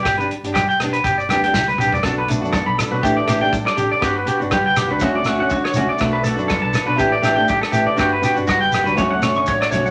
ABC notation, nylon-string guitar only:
X:1
M:4/4
L:1/16
Q:"Swing 16ths" 1/4=121
K:Glyd
V:1 name="Nylon-string guitar"
z [DG] z [DG] z2 [B,DG] z3 [B,DG] [DG] z2 [B,DG] z | [DF] z [A,DF] [DF] z3 [DF] [E,A,DG] z [E,A,DG] [DG] z2 [DG] z | [DF] z [B,DF] [DF] z3 [DF] [A,CF] z [A,CF] [CF] z2 [A,CF] z | [A,DF] z [A,F] [DF] z3 [DF] [E,DG] z [E,A,DG] [A,DG] z2 [E,A,DG] z |
[B,DF] z [B,DF] [DF] z3 [DF] [A,CF] z [A,CF] C z2 [A,CF] z |]